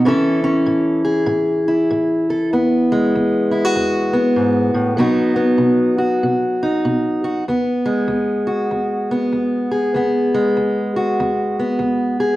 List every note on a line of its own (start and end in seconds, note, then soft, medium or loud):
0.05 0.62 A2 medium
0.05 4.98 E3 medium
0.05 0.43 C#4 medium
0.05 1.67 E4 medium
0.05 1.04 A4 medium
0.44 2.49 C#4 medium
0.66 1.23 A2 medium
1.05 2.28 G#4 medium
1.26 1.84 A2 medium
1.68 2.49 E4 medium
1.90 2.47 A2 medium
2.30 2.49 A4 medium
2.53 3.09 E2 medium
2.53 4.13 B3 medium
2.92 4.99 G#3 medium
3.15 3.71 E2 medium
3.51 3.65 E4 medium
3.65 4.98 F#4 soft
3.75 4.32 E2 medium
4.13 4.99 B3 medium
4.36 4.74 G#2 medium
4.74 4.98 A2 medium
4.97 5.55 B2 medium
4.97 7.43 F#3 medium
4.97 5.35 B3 medium
4.97 6.61 D#4 medium
4.97 5.97 F#4 medium
5.36 7.42 B3 medium
5.58 6.16 B2 medium
5.98 7.22 F#4 medium
6.23 6.80 B2 medium
6.63 7.44 D#4 medium
6.85 7.41 B2 medium
7.24 7.44 F#4 medium
7.48 8.04 E2 medium
7.48 9.11 B3 medium
7.86 10.34 G#3 medium
8.08 8.65 E2 medium
8.47 9.70 F#4 medium
8.71 9.27 E2 medium
9.11 9.95 B3 medium
9.32 9.89 E2 medium
9.71 10.96 G#4 medium
9.94 10.51 E2 medium
9.94 11.59 B3 medium
10.34 12.36 G#3 medium
10.57 11.13 E2 medium
10.96 12.19 F#4 medium
11.20 11.76 E2 medium
11.59 12.36 B3 medium
11.79 12.36 E2 medium
12.20 12.36 G#4 medium